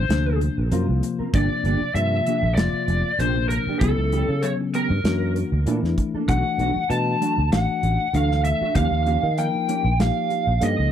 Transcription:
Already playing: lead electric guitar C5
0.09 fretless electric bass D2, tine electric piano C3 F3 A#3 D4, muted clean electric guitar stroke, snare, closed hi-hat
0.41 muted clean electric guitar stroke, closed hi-hat
0.58 fretless electric bass A#1
0.71 fretless electric bass F#2, tine electric piano C3 F3 A#3 F4, clean electric guitar F#3 C4 F4 A#4, closed hi-hat
0.88 fretless electric bass C2, muted clean electric guitar stroke
1.03 muted clean electric guitar stroke, closed hi-hat
1.19 clean electric guitar C4 F4 A#4, muted fretless electric bass stroke
1.34 fretless electric bass G1, tine electric piano C3 F3 A#3 D4, clean electric guitar F3 A#3 D4 G4, lead electric guitar D5, kick, closed hi-hat
1.51 muted clean electric guitar stroke
1.64 fretless electric bass G1, clean electric guitar F3 A#3 D4 G4, closed hi-hat
1.82 muted clean electric guitar stroke
1.95 fretless electric bass G2, tine electric piano C3 F3 A#3 F4, lead electric guitar E5, closed hi-hat
2.13 muted clean electric guitar stroke
2.26 clean electric guitar F3 A#3 D4 G4, closed hi-hat
2.43 fretless electric bass A#1, muted clean electric guitar stroke
2.55 fretless electric bass F1, tine electric piano C3 F3 A#3 F4, lead electric guitar D5, muted clean electric guitar stroke, snare, closed hi-hat
2.73 muted fretless electric bass stroke
2.88 fretless electric bass F1, muted clean electric guitar stroke, closed hi-hat
3.19 fretless electric bass A#1, tine electric piano C3 F3 A#3 D4, clean electric guitar F3 A#3 D4 G4, lead electric guitar C5, closed hi-hat
3.37 muted clean electric guitar stroke
3.49 lead electric guitar A#4, muted clean electric guitar stroke, closed hi-hat
3.67 clean electric guitar A#3 D4 G4, muted fretless electric bass stroke
3.80 fretless electric bass C#2, tine electric piano C#3 F#3 B3 E4, clean electric guitar E3 B3 C#4 G4, lead electric guitar A4, kick, closed hi-hat
3.98 fretless electric bass C#2, muted clean electric guitar stroke
4.12 clean electric guitar E3 B3 C#4 G4, closed hi-hat
4.29 fretless electric bass C#3, muted clean electric guitar stroke
4.42 tine electric piano C#3 F#3 B3 C#4, lead electric guitar C#5, closed hi-hat
4.60 muted clean electric guitar stroke
4.74 clean electric guitar E3 B3 C#4 G4, lead electric guitar A#4, closed hi-hat
4.90 fretless electric bass G2, muted clean electric guitar stroke
5.04 fretless electric bass F#2, tine electric piano E3 A#3 D4 F#4, muted clean electric guitar stroke, snare, closed hi-hat
5.36 muted clean electric guitar stroke, closed hi-hat
5.52 fretless electric bass D2
5.66 fretless electric bass A#2, clean electric guitar E3 A#3 D4 A4, tine electric piano E3 A3 D4 E4, closed hi-hat
5.83 fretless electric bass E2, muted clean electric guitar stroke, snare
5.98 muted clean electric guitar stroke, kick, closed hi-hat
6.14 clean electric guitar A#3 D4 A4, muted fretless electric bass stroke
6.28 fretless electric bass B1, tine electric piano E3 A3 D4 F#4, clean electric guitar F#3 A3 D4 F#4, lead electric guitar F#5, kick, closed hi-hat
6.46 muted clean electric guitar stroke
6.58 fretless electric bass B1, clean electric guitar F#3 A3 D4 F#4, closed hi-hat
6.76 muted fretless electric bass stroke, muted clean electric guitar stroke
6.89 fretless electric bass B2, tine electric piano E3 A3 D4 F#4, lead electric guitar A5, closed hi-hat
7.07 muted clean electric guitar stroke
7.21 clean electric guitar F#3 A3 D4 F#4, closed hi-hat
7.38 fretless electric bass D2, muted clean electric guitar stroke
7.52 fretless electric bass A1, tine electric piano E3 A3 D4 F#4, lead electric guitar F#5, muted clean electric guitar stroke, snare, closed hi-hat
7.69 muted fretless electric bass stroke
7.82 fretless electric bass A1, muted clean electric guitar stroke, closed hi-hat
8.13 fretless electric bass D2, tine electric piano E3 A3 D4 A4, clean electric guitar F#3 A3 D4 F#4, lead electric guitar F5, closed hi-hat
8.31 muted clean electric guitar stroke, snare
8.45 lead electric guitar E5, muted clean electric guitar stroke, closed hi-hat
8.61 clean electric guitar A3 D4 F#4, muted fretless electric bass stroke
8.75 fretless electric bass D#2, tine electric piano F3 A#3 D#4 G4, clean electric guitar F3 A#3 C#4 G4, lead electric guitar F5, kick, closed hi-hat
8.91 fretless electric bass D#2, muted clean electric guitar stroke
9.06 clean electric guitar F3 A#3 C#4 G4, closed hi-hat
9.23 fretless electric bass D#3, muted clean electric guitar stroke
9.38 tine electric piano F3 A#3 D#4 A#4, lead electric guitar G5, closed hi-hat
9.54 muted clean electric guitar stroke
9.68 clean electric guitar F3 A#3 C#4 G4, closed hi-hat
9.85 fretless electric bass A#1, muted clean electric guitar stroke
9.99 tine electric piano F3 A#3 D#4 G4, lead electric guitar F5, muted clean electric guitar stroke, snare, closed hi-hat
10.30 muted clean electric guitar stroke, closed hi-hat
10.47 fretless electric bass A#1
10.61 fretless electric bass G2, tine electric piano F3 A#3 D#4 A4, clean electric guitar F3 A#3 C#4 G4, lead electric guitar D#5, closed hi-hat
10.78 fretless electric bass C#2, muted clean electric guitar stroke

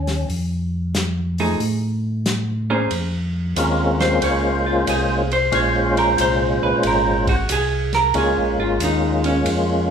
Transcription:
Already playing: tonewheel organ D#2 C#4
0.07 snare, open hi-hat
0.29 tonewheel organ F2, open hi-hat
0.95 snare, closed hi-hat
1.38 hollow-body jazz guitar F3 A3 D#4 G#4, open hi-hat
1.60 tonewheel organ A2, open hi-hat
2.26 snare, closed hi-hat
2.70 hollow-body jazz guitar A#3 C#4 G#4 C5
2.90 tonewheel organ F2, ride
3.56 tonewheel organ D#2 G#3 A#3 C4 C#4 F4, hi-hat pedal, ride
4.00 hollow-body jazz guitar C5, snare, ride
4.21 tonewheel organ C#2 G#3 A#3 C#4 F4 C5, hollow-body jazz guitar C#5, ride
4.66 hollow-body jazz guitar F4
4.86 tonewheel organ C2, hollow-body jazz guitar G#4, hi-hat pedal, ride
5.31 hollow-body jazz guitar C5, ride
5.52 tonewheel organ A#1 A#2 G#3 C#4 F4 C5, hollow-body jazz guitar C#5, ride
5.97 hollow-body jazz guitar A#4, ride
6.18 tonewheel organ C2, hollow-body jazz guitar C5, hi-hat pedal, ride
6.62 tonewheel organ C2, hollow-body jazz guitar B4
6.83 tonewheel organ G#1, hollow-body jazz guitar A#4, ride
7.27 hollow-body jazz guitar F#4, kick, ride
7.49 tonewheel organ C2, hollow-body jazz guitar G#4, hi-hat pedal, ride
7.93 hollow-body jazz guitar A#4, snare, ride
8.14 tonewheel organ C#2 G#3 A#3 C#4 F4, hollow-body jazz guitar G#4, ride
8.37 tonewheel organ A#1
8.58 tonewheel organ G#1, hollow-body jazz guitar F4
8.80 tonewheel organ D#2, hi-hat pedal, ride
8.84 hollow-body jazz guitar D#4
9.24 hollow-body jazz guitar C#4, ride
9.45 tonewheel organ F2, ride

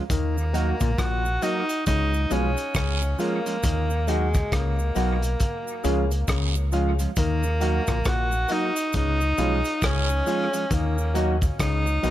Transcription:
0.10 fingered electric bass D#2, clav D#3, tenor saxophone A#3, kick, closed hi-hat, cabasa
0.38 cabasa
0.53 clean electric guitar F#3 A#3 D#4 F#4, grand piano F#4 A#4 D#5 F#5, closed hi-hat, cabasa
0.80 fingered electric bass A#1, clav A#2, kick, closed hi-hat, cabasa
0.98 fingered electric bass A#1, clav A#2, tenor saxophone F#4, kick, cross-stick, closed hi-hat, cabasa
1.25 muted clean electric guitar stroke, cabasa
1.42 clean electric guitar F#3 A#3 D#4 F#4, tenor saxophone D#4, grand piano F#4 A#4 D#5 F#5, closed hi-hat, cabasa
1.69 grand piano D#5 F#5, closed hi-hat, cabasa
1.86 fingered electric bass C#2, clav C#3, tenor saxophone D#4, kick, closed hi-hat, cabasa
2.14 cabasa
2.30 fingered electric bass B1, clav B2, clean electric guitar F3 G#3 C#4 F4, tenor saxophone C#4, grand piano F4 G#4 C#5 F5, closed hi-hat, cabasa
2.57 closed hi-hat, cabasa
2.75 fingered electric bass C#2, clav C#3, tenor saxophone C#4, kick, cross-stick, closed hi-hat, cabasa, long guiro
3.02 grand piano C#5 F5, cabasa
3.18 clean electric guitar F3 G#3 C#4 F4, tenor saxophone A#3, grand piano F4 G#4 C#5 F5, closed hi-hat, cabasa
3.46 clean electric guitar F3 G#3 C#4 F4, closed hi-hat, cabasa
3.63 fingered electric bass D#2, clav D#3, kick, closed hi-hat, cabasa
3.90 cabasa
4.07 clean electric guitar F#3 A#3 D#4 F#4, tenor saxophone G#3, grand piano F#4 A#4 D#5 F#5, closed hi-hat, cabasa
4.34 kick, cross-stick, closed hi-hat, cabasa
4.52 fingered electric bass C#2, clav C#3, tenor saxophone A#3, kick, cross-stick, closed hi-hat, cabasa
4.79 muted clean electric guitar stroke, cabasa
4.95 fingered electric bass B1, clav B2, clean electric guitar F#3 A#3 D#4 F#4, grand piano F#4 A#4 D#5 F#5, closed hi-hat, cabasa
5.22 grand piano D#5 F#5, closed hi-hat, cabasa
5.40 kick, closed hi-hat, cabasa
5.68 cabasa
5.83 fingered electric bass C#2, clav C#3, clean electric guitar F3 G#3 C#4 F4, grand piano F4 G#4 C#5 F5, closed hi-hat, cabasa
6.11 closed hi-hat, cabasa
6.28 fingered electric bass C#2, clav C#3, kick, cross-stick, closed hi-hat, cabasa, long guiro
6.55 grand piano C#5 F5, cabasa
6.72 clean electric guitar F3 G#3 C#4 F4, grand piano F4 G#4 C#5 F5, closed hi-hat, cabasa
6.99 clean electric guitar F3 G#3 C#4 F4, closed hi-hat, cabasa
7.16 fingered electric bass D#2, clav D#3, tenor saxophone A#3, kick, closed hi-hat, cabasa
7.43 cabasa
7.60 clean electric guitar F#3 A#3 D#4 F#4, grand piano F#4 A#4 D#5 F#5, closed hi-hat, cabasa
7.87 fingered electric bass A#1, clav A#2, kick, cross-stick, closed hi-hat, cabasa
8.05 fingered electric bass A#1, clav A#2, tenor saxophone F#4, kick, cross-stick, closed hi-hat, cabasa
8.32 muted clean electric guitar stroke, cabasa
8.48 clean electric guitar F#3 A#3 D#4 F#4, grand piano F#4 A#4 D#5 F#5, closed hi-hat, cabasa
8.53 tenor saxophone D#4
8.76 grand piano D#5 F#5, closed hi-hat, cabasa
8.93 fingered electric bass C#2, clav C#3, tenor saxophone D#4, kick, closed hi-hat, cabasa
9.21 cabasa
9.38 fingered electric bass B1, clav B2, clean electric guitar F3 G#3 C#4 F4, grand piano F4 G#4 C#5 F5, closed hi-hat, cabasa
9.65 closed hi-hat, cabasa
9.82 fingered electric bass C#2, clav C#3, tenor saxophone C#4, kick, cross-stick, closed hi-hat, cabasa, long guiro
10.09 grand piano C#5 F5, cabasa
10.26 clean electric guitar F3 G#3 C#4 F4, grand piano F4 G#4 C#5 F5, closed hi-hat, cabasa
10.53 clean electric guitar F3 G#3 C#4 F4, closed hi-hat, cabasa
10.71 fingered electric bass D#2, clav D#3, tenor saxophone A#3, kick, closed hi-hat, cabasa
10.98 cabasa
11.14 clean electric guitar F#3 A#3 D#4 F#4, grand piano F#4 A#4 D#5 F#5, closed hi-hat, cabasa
11.41 kick, closed hi-hat, cabasa
11.60 fingered electric bass C#2, clav C#3, tenor saxophone D#4, kick, cross-stick, closed hi-hat, cabasa
11.86 muted clean electric guitar stroke, cabasa
12.03 fingered electric bass B1, clav B2, clean electric guitar F#3 A#3 D#4 F#4, grand piano F#4 A#4 D#5 F#5, closed hi-hat, cabasa

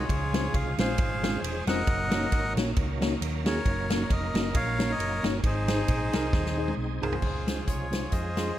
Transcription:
Already playing: melodica F4 G#4 C#5
0.08 fingered electric bass C#2, tine electric piano C#3, tonewheel organ F3 G#3 C#4 G4, kick, ride bell
0.14 tonewheel organ G#4
0.33 tine electric piano G#3 C4 C#4 F4 C5, snare, ride bell
0.54 fingered electric bass C2, melodica F5, kick, ride bell
0.78 fingered electric bass A#1, tine electric piano G#3 C4 C#4 F4 C5, melodica G#4 C5 F5, snare, ride bell
0.98 fingered electric bass G#1, kick, ride bell
1.23 tine electric piano G#3 C4 C#4 F4 C5, snare, ride bell
1.42 fingered electric bass E1, ride bell
1.67 fingered electric bass F1, tine electric piano G#3 C4 C#4 F4 C5, melodica A#4 D#5 F#5, snare, ride bell
1.87 fingered electric bass F#1, tonewheel organ F#3 A#3 C#4 D#4 A#4, kick, ride bell
2.11 tine electric piano A#3 C#4 D#4 F#4 C#5, snare, ride bell
2.32 fingered electric bass G#1, kick, ride bell
2.56 fingered electric bass A#1, tine electric piano A#3 C#4 D#4 F#4 C#5, snare, ride bell
2.76 fingered electric bass C#2, kick, ride bell
3.01 tine electric piano A#3 C#4 D#4 F#4 C#5, snare, ride bell
3.21 fingered electric bass D#2, ride bell
3.44 tine electric piano A#3 C#4 D#4 F#4 G#4, melodica A#4 C#5, snare, ride bell
3.66 fingered electric bass F#1, tonewheel organ F#3 A#3 C#4 D#4 A#4, kick, ride bell
3.90 tine electric piano A#3 C#4 D#4 F#4 C#5, melodica C#5, snare, ride bell
4.10 fingered electric bass F1, melodica A#4 D#5, kick, ride bell
4.34 fingered electric bass F#1, tine electric piano A#3 C#4 D#4 F#4 D#5, snare, ride bell
4.55 fingered electric bass A#1, melodica A#4 C#5 F5, kick, ride bell
4.78 tine electric piano A#3 C#4 D#4 F#4 C#5, snare, ride bell
4.90 melodica A#4 D#5
4.98 fingered electric bass F#1, ride bell
5.23 fingered electric bass G1, tine electric piano A#3 C#4 D#4 F#4 C#5, melodica C#5, snare, ride bell
5.43 fingered electric bass G#1, tine electric piano G#2, tonewheel organ C4 D#4 G#4, melodica D#4 G#4 C5, kick, ride bell
5.68 tine electric piano D#4 G#4 C5, snare, ride bell
5.88 fingered electric bass A#1, kick, ride bell
6.13 fingered electric bass C2, tine electric piano D#4 G#4 A#4, snare, ride bell
6.33 fingered electric bass D#2, kick, snare
6.46 snare
6.57 tine electric piano D#4 G#4 D#5
6.68 high tom
6.77 fingered electric bass B1
7.02 fingered electric bass C2, tine electric piano D#4 G#4 A#4, melodica F4 G#4 C5, floor tom
7.12 floor tom
7.22 fingered electric bass C#2, tine electric piano C#3, tonewheel organ F3 G#3 C#4 G#4, kick, crash
7.46 tine electric piano G#3 C#4 F4 C5, snare, closed hi-hat
7.67 fingered electric bass C2, melodica F4 G#4 C#5, kick, closed hi-hat
7.91 tine electric piano G#3 C#4 F4 C5, snare, closed hi-hat
8.12 fingered electric bass F2, melodica G#4 C5 D#5, kick, closed hi-hat
8.36 tine electric piano G#3 C#4 F4 G#4, snare, closed hi-hat

